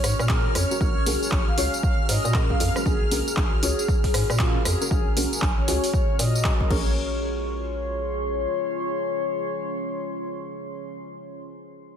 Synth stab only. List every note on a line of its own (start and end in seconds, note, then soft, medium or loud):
0.00 0.27 C#4 loud
0.00 0.27 F#4 medium
0.00 0.28 G#4 medium
0.00 0.28 C#5 loud
0.29 0.67 C#4 medium
0.29 0.67 F#4 medium
0.29 0.67 G#4 medium
0.29 0.67 A#4 loud
0.71 0.78 C#4 medium
0.71 0.78 F#4 medium
0.71 0.78 G#4 medium
0.71 0.78 A#4 medium
0.81 0.95 C#4 medium
0.81 0.95 F#4 medium
0.81 0.95 A#4 medium
1.06 1.55 C#4 medium
1.06 1.55 F#4 medium
1.06 1.55 G#4 medium
1.06 1.55 A#4 loud
1.57 2.32 C#4 loud
1.57 2.33 F#4 medium
1.57 2.33 G#4 medium
1.57 2.33 C#5 loud
2.34 2.72 C#4 medium
2.34 2.72 F#4 medium
2.34 2.72 G#4 medium
2.34 2.72 A#4 loud
2.76 2.83 C#4 medium
2.76 2.83 F#4 medium
2.76 2.84 G#4 medium
2.76 2.84 A#4 medium
2.86 3.00 C#4 medium
2.86 3.00 F#4 medium
2.86 3.00 G#4 medium
2.86 3.00 A#4 medium
3.11 3.60 C#4 medium
3.11 3.60 F#4 medium
3.11 3.60 G#4 medium
3.11 3.60 A#4 loud
3.62 4.38 C#4 loud
3.62 4.38 F#4 medium
3.62 4.38 G#4 loud
3.62 4.38 C#5 loud
4.40 4.77 C#4 medium
4.40 4.77 F#4 medium
4.40 4.77 G#4 medium
4.40 4.77 A#4 loud
4.81 4.89 C#4 medium
4.81 4.89 F#4 medium
4.81 4.89 G#4 medium
4.81 4.89 A#4 medium
4.91 5.05 C#4 medium
4.91 5.05 F#4 medium
4.91 5.05 G#4 medium
4.91 5.05 A#4 medium
5.16 5.65 C#4 medium
5.16 5.65 F#4 medium
5.16 5.66 G#4 medium
5.16 5.66 A#4 medium
5.68 6.43 C#4 loud
5.68 6.43 F#4 medium
5.68 6.43 G#4 medium
5.68 6.43 C#5 loud
6.45 6.69 C#4 medium
6.45 6.70 F#4 medium
6.45 6.69 G#4 medium
6.45 6.69 A#4 loud
6.70 11.43 C#4 medium
6.70 11.44 G#4 medium
6.70 11.44 A#4 medium
6.70 11.44 C#5 medium